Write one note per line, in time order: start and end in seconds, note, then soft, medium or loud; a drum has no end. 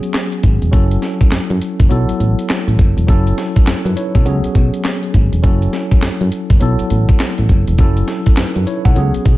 0.00 0.70 F#3 medium
0.00 0.70 B3 medium
0.00 0.71 C#4 medium
0.00 0.71 G#4 medium
0.00 closed hi-hat medium
0.14 snare loud
0.14 clap medium
0.14 closed hi-hat medium
0.32 closed hi-hat soft
0.43 0.59 G#1 loud
0.43 kick medium
0.43 closed hi-hat medium
0.62 0.71 E1 medium
0.62 closed hi-hat soft
0.71 0.98 F#1 loud
0.71 1.87 F#3 medium
0.71 1.88 C#4 medium
0.71 1.88 E4 medium
0.71 1.89 A4 medium
0.71 kick loud
0.71 closed hi-hat medium
0.91 closed hi-hat soft
1.02 snare medium
1.02 closed hi-hat medium
1.21 1.25 F#2 medium
1.21 kick loud
1.21 closed hi-hat medium
1.31 1.39 F#2 soft
1.31 snare loud
1.31 clap medium
1.31 closed hi-hat medium
1.50 1.59 F#2 loud
1.50 closed hi-hat soft
1.62 closed hi-hat medium
1.80 1.89 F#1 medium
1.80 kick medium
1.80 closed hi-hat medium
1.89 2.06 B1 loud
1.89 3.05 F#3 medium
1.89 3.06 B3 medium
1.89 3.06 E4 medium
1.89 3.06 A4 medium
1.89 closed hi-hat medium
2.09 2.13 A1 soft
2.09 closed hi-hat medium
2.20 2.35 A1 medium
2.20 closed hi-hat medium
2.39 closed hi-hat medium
2.49 snare loud
2.49 clap medium
2.49 closed hi-hat medium
2.68 2.77 A1 medium
2.68 closed hi-hat soft
2.79 2.94 F#1 medium
2.79 kick medium
2.79 closed hi-hat medium
2.97 3.06 E1 medium
2.97 closed hi-hat soft
3.07 3.33 F#1 loud
3.07 4.23 F#3 medium
3.07 3.37 C#4 medium
3.07 3.37 E4 medium
3.07 3.38 A4 medium
3.07 kick loud
3.07 closed hi-hat medium
3.27 closed hi-hat soft
3.38 snare medium
3.38 closed hi-hat medium
3.56 3.61 F#2 soft
3.56 kick medium
3.56 closed hi-hat medium
3.67 3.75 F#2 soft
3.67 snare loud
3.67 clap medium
3.67 closed hi-hat medium
3.85 3.94 F#2 loud
3.85 3.96 D#4 medium
3.85 3.96 B4 medium
3.85 closed hi-hat medium
3.97 4.14 E4 medium
3.97 4.14 C#5 medium
3.97 closed hi-hat medium
4.15 4.24 B1 medium
4.15 4.26 C#4 medium
4.15 4.43 A4 medium
4.15 kick medium
4.15 closed hi-hat soft
4.25 4.41 C#2 loud
4.25 5.41 F#3 medium
4.25 5.41 B3 medium
4.25 5.42 C#4 medium
4.25 5.42 G#4 medium
4.25 closed hi-hat medium
4.44 4.49 B1 soft
4.44 closed hi-hat medium
4.55 4.71 B1 loud
4.55 kick medium
4.55 closed hi-hat medium
4.74 closed hi-hat medium
4.84 snare loud
4.84 clap medium
4.84 closed hi-hat medium
5.03 closed hi-hat soft
5.14 5.29 G#1 loud
5.14 kick medium
5.14 closed hi-hat medium
5.32 5.42 E1 medium
5.32 closed hi-hat medium
5.43 5.68 F#1 loud
5.43 6.58 F#3 medium
5.43 6.59 C#4 medium
5.43 6.59 E4 medium
5.43 6.60 A4 medium
5.43 kick loud
5.43 closed hi-hat medium
5.62 closed hi-hat soft
5.73 snare medium
5.73 closed hi-hat medium
5.91 5.96 F#2 soft
5.91 kick medium
5.91 closed hi-hat medium
6.02 6.10 F#2 soft
6.02 snare loud
6.02 clap medium
6.02 closed hi-hat medium
6.21 6.30 F#2 loud
6.21 closed hi-hat medium
6.32 closed hi-hat medium
6.50 6.59 F#1 medium
6.50 kick loud
6.50 closed hi-hat medium
6.60 6.77 B1 loud
6.60 7.76 F#3 medium
6.60 7.76 B3 medium
6.60 7.77 E4 medium
6.60 7.77 A4 medium
6.60 closed hi-hat medium
6.79 6.84 A1 soft
6.79 closed hi-hat medium
6.90 7.06 A1 loud
6.90 closed hi-hat medium
7.09 kick loud
7.09 closed hi-hat medium
7.20 snare loud
7.20 clap medium
7.20 closed hi-hat medium
7.38 7.48 A1 medium
7.38 closed hi-hat soft
7.49 7.65 F#1 medium
7.49 kick medium
7.49 closed hi-hat medium
7.68 7.77 E1 medium
7.68 closed hi-hat medium
7.78 8.03 F#1 medium
7.78 8.94 F#3 medium
7.78 8.94 C#4 medium
7.78 8.08 E4 medium
7.78 8.08 A4 medium
7.78 kick loud
7.78 closed hi-hat medium
7.97 closed hi-hat medium
8.08 snare medium
8.08 closed hi-hat medium
8.26 8.31 F#2 soft
8.26 kick medium
8.26 closed hi-hat medium
8.37 8.45 F#2 soft
8.37 8.66 D#4 medium
8.37 8.66 B4 medium
8.37 snare loud
8.37 clap medium
8.37 closed hi-hat medium
8.56 8.65 F#2 medium
8.56 closed hi-hat soft
8.67 8.85 E4 medium
8.67 8.84 C#5 medium
8.67 closed hi-hat medium
8.85 8.95 B1 medium
8.85 9.13 A4 medium
8.85 9.13 F#5 medium
8.85 kick loud
8.85 closed hi-hat medium
8.95 9.12 C#2 loud
8.95 9.38 F#3 medium
8.95 9.38 B3 medium
8.95 9.38 C#4 medium
8.95 9.38 G#4 medium
8.95 closed hi-hat medium
9.14 9.19 B1 soft
9.14 closed hi-hat medium
9.26 9.38 B1 loud
9.26 kick medium
9.26 closed hi-hat medium